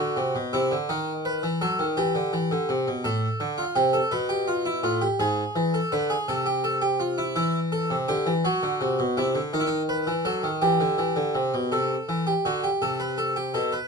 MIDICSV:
0, 0, Header, 1, 2, 480
1, 0, Start_track
1, 0, Key_signature, 0, "minor"
1, 0, Tempo, 719424
1, 594, Time_signature, 6, 3, 24, 8
1, 5391, Tempo, 727273
1, 9218, End_track
2, 0, Start_track
2, 0, Title_t, "Harpsichord"
2, 0, Program_c, 0, 6
2, 0, Note_on_c, 0, 50, 54
2, 0, Note_on_c, 0, 66, 64
2, 109, Note_off_c, 0, 50, 0
2, 111, Note_on_c, 0, 48, 56
2, 228, Note_off_c, 0, 48, 0
2, 233, Note_on_c, 0, 47, 50
2, 336, Note_off_c, 0, 66, 0
2, 349, Note_off_c, 0, 47, 0
2, 354, Note_on_c, 0, 64, 65
2, 355, Note_on_c, 0, 48, 57
2, 471, Note_off_c, 0, 48, 0
2, 476, Note_on_c, 0, 50, 58
2, 504, Note_off_c, 0, 64, 0
2, 592, Note_off_c, 0, 50, 0
2, 595, Note_on_c, 0, 51, 56
2, 596, Note_on_c, 0, 63, 68
2, 745, Note_off_c, 0, 63, 0
2, 836, Note_on_c, 0, 71, 67
2, 945, Note_off_c, 0, 51, 0
2, 955, Note_on_c, 0, 52, 52
2, 985, Note_off_c, 0, 71, 0
2, 1072, Note_off_c, 0, 52, 0
2, 1077, Note_on_c, 0, 69, 73
2, 1078, Note_on_c, 0, 54, 60
2, 1194, Note_off_c, 0, 54, 0
2, 1196, Note_on_c, 0, 51, 52
2, 1226, Note_off_c, 0, 69, 0
2, 1313, Note_off_c, 0, 51, 0
2, 1315, Note_on_c, 0, 67, 73
2, 1316, Note_on_c, 0, 52, 58
2, 1433, Note_off_c, 0, 52, 0
2, 1435, Note_on_c, 0, 50, 60
2, 1553, Note_off_c, 0, 50, 0
2, 1555, Note_on_c, 0, 52, 61
2, 1673, Note_off_c, 0, 52, 0
2, 1677, Note_on_c, 0, 50, 54
2, 1793, Note_off_c, 0, 50, 0
2, 1796, Note_on_c, 0, 48, 60
2, 1912, Note_off_c, 0, 48, 0
2, 1919, Note_on_c, 0, 47, 61
2, 2013, Note_off_c, 0, 67, 0
2, 2031, Note_on_c, 0, 45, 73
2, 2032, Note_on_c, 0, 69, 61
2, 2033, Note_off_c, 0, 47, 0
2, 2180, Note_off_c, 0, 45, 0
2, 2270, Note_on_c, 0, 50, 80
2, 2380, Note_off_c, 0, 69, 0
2, 2387, Note_on_c, 0, 65, 58
2, 2419, Note_off_c, 0, 50, 0
2, 2505, Note_on_c, 0, 67, 61
2, 2506, Note_off_c, 0, 65, 0
2, 2507, Note_on_c, 0, 48, 76
2, 2624, Note_on_c, 0, 69, 58
2, 2625, Note_off_c, 0, 67, 0
2, 2657, Note_off_c, 0, 48, 0
2, 2744, Note_off_c, 0, 69, 0
2, 2745, Note_on_c, 0, 71, 69
2, 2746, Note_on_c, 0, 47, 77
2, 2863, Note_on_c, 0, 67, 62
2, 2865, Note_off_c, 0, 71, 0
2, 2984, Note_off_c, 0, 67, 0
2, 2986, Note_on_c, 0, 65, 58
2, 3105, Note_off_c, 0, 65, 0
2, 3106, Note_on_c, 0, 64, 59
2, 3214, Note_off_c, 0, 47, 0
2, 3224, Note_on_c, 0, 45, 78
2, 3225, Note_off_c, 0, 64, 0
2, 3226, Note_on_c, 0, 65, 62
2, 3345, Note_off_c, 0, 65, 0
2, 3345, Note_on_c, 0, 67, 64
2, 3375, Note_off_c, 0, 45, 0
2, 3465, Note_off_c, 0, 67, 0
2, 3466, Note_on_c, 0, 44, 76
2, 3467, Note_on_c, 0, 68, 63
2, 3617, Note_off_c, 0, 44, 0
2, 3707, Note_on_c, 0, 52, 71
2, 3819, Note_off_c, 0, 68, 0
2, 3831, Note_on_c, 0, 69, 60
2, 3857, Note_off_c, 0, 52, 0
2, 3948, Note_off_c, 0, 69, 0
2, 3951, Note_on_c, 0, 71, 64
2, 3952, Note_on_c, 0, 50, 77
2, 4068, Note_off_c, 0, 71, 0
2, 4069, Note_on_c, 0, 68, 60
2, 4101, Note_off_c, 0, 50, 0
2, 4187, Note_off_c, 0, 68, 0
2, 4193, Note_on_c, 0, 48, 86
2, 4193, Note_on_c, 0, 69, 66
2, 4309, Note_off_c, 0, 69, 0
2, 4309, Note_on_c, 0, 67, 59
2, 4427, Note_off_c, 0, 67, 0
2, 4430, Note_on_c, 0, 69, 61
2, 4547, Note_off_c, 0, 69, 0
2, 4547, Note_on_c, 0, 67, 59
2, 4666, Note_off_c, 0, 67, 0
2, 4668, Note_on_c, 0, 65, 56
2, 4787, Note_off_c, 0, 65, 0
2, 4789, Note_on_c, 0, 64, 64
2, 4891, Note_off_c, 0, 48, 0
2, 4900, Note_off_c, 0, 64, 0
2, 4908, Note_on_c, 0, 64, 79
2, 4911, Note_on_c, 0, 52, 66
2, 5059, Note_off_c, 0, 64, 0
2, 5152, Note_on_c, 0, 69, 72
2, 5262, Note_off_c, 0, 52, 0
2, 5273, Note_on_c, 0, 48, 54
2, 5302, Note_off_c, 0, 69, 0
2, 5390, Note_off_c, 0, 48, 0
2, 5393, Note_on_c, 0, 50, 68
2, 5394, Note_on_c, 0, 67, 80
2, 5509, Note_off_c, 0, 50, 0
2, 5511, Note_on_c, 0, 52, 59
2, 5542, Note_off_c, 0, 67, 0
2, 5628, Note_off_c, 0, 52, 0
2, 5632, Note_on_c, 0, 54, 70
2, 5635, Note_on_c, 0, 66, 76
2, 5748, Note_off_c, 0, 54, 0
2, 5752, Note_on_c, 0, 50, 66
2, 5869, Note_off_c, 0, 50, 0
2, 5872, Note_on_c, 0, 48, 64
2, 5989, Note_off_c, 0, 48, 0
2, 5992, Note_on_c, 0, 47, 60
2, 6099, Note_off_c, 0, 66, 0
2, 6108, Note_off_c, 0, 47, 0
2, 6112, Note_on_c, 0, 48, 62
2, 6113, Note_on_c, 0, 64, 69
2, 6228, Note_off_c, 0, 48, 0
2, 6228, Note_on_c, 0, 50, 62
2, 6261, Note_off_c, 0, 64, 0
2, 6346, Note_off_c, 0, 50, 0
2, 6350, Note_on_c, 0, 51, 66
2, 6352, Note_on_c, 0, 63, 69
2, 6380, Note_off_c, 0, 63, 0
2, 6394, Note_on_c, 0, 64, 62
2, 6438, Note_on_c, 0, 63, 75
2, 6441, Note_off_c, 0, 64, 0
2, 6531, Note_off_c, 0, 63, 0
2, 6586, Note_on_c, 0, 71, 74
2, 6699, Note_off_c, 0, 51, 0
2, 6705, Note_on_c, 0, 52, 64
2, 6736, Note_off_c, 0, 71, 0
2, 6823, Note_on_c, 0, 54, 67
2, 6824, Note_off_c, 0, 52, 0
2, 6825, Note_on_c, 0, 69, 69
2, 6943, Note_off_c, 0, 54, 0
2, 6944, Note_on_c, 0, 51, 55
2, 6976, Note_off_c, 0, 69, 0
2, 7064, Note_off_c, 0, 51, 0
2, 7065, Note_on_c, 0, 67, 73
2, 7067, Note_on_c, 0, 52, 67
2, 7186, Note_off_c, 0, 52, 0
2, 7187, Note_on_c, 0, 50, 62
2, 7306, Note_off_c, 0, 50, 0
2, 7306, Note_on_c, 0, 52, 63
2, 7424, Note_on_c, 0, 50, 53
2, 7426, Note_off_c, 0, 52, 0
2, 7545, Note_off_c, 0, 50, 0
2, 7547, Note_on_c, 0, 48, 62
2, 7667, Note_off_c, 0, 48, 0
2, 7673, Note_on_c, 0, 47, 57
2, 7770, Note_off_c, 0, 67, 0
2, 7791, Note_off_c, 0, 47, 0
2, 7792, Note_on_c, 0, 48, 64
2, 7794, Note_on_c, 0, 69, 52
2, 7942, Note_off_c, 0, 48, 0
2, 8036, Note_on_c, 0, 52, 61
2, 8144, Note_off_c, 0, 69, 0
2, 8155, Note_on_c, 0, 67, 48
2, 8184, Note_off_c, 0, 52, 0
2, 8271, Note_off_c, 0, 67, 0
2, 8277, Note_on_c, 0, 50, 62
2, 8277, Note_on_c, 0, 66, 53
2, 8392, Note_off_c, 0, 66, 0
2, 8398, Note_on_c, 0, 67, 48
2, 8425, Note_off_c, 0, 50, 0
2, 8512, Note_off_c, 0, 67, 0
2, 8518, Note_on_c, 0, 48, 65
2, 8518, Note_on_c, 0, 69, 60
2, 8632, Note_off_c, 0, 69, 0
2, 8637, Note_on_c, 0, 71, 53
2, 8751, Note_off_c, 0, 71, 0
2, 8755, Note_on_c, 0, 69, 57
2, 8870, Note_off_c, 0, 69, 0
2, 8877, Note_on_c, 0, 67, 49
2, 8980, Note_off_c, 0, 48, 0
2, 8991, Note_off_c, 0, 67, 0
2, 8995, Note_on_c, 0, 47, 67
2, 8997, Note_on_c, 0, 69, 55
2, 9111, Note_off_c, 0, 69, 0
2, 9117, Note_on_c, 0, 71, 60
2, 9143, Note_off_c, 0, 47, 0
2, 9218, Note_off_c, 0, 71, 0
2, 9218, End_track
0, 0, End_of_file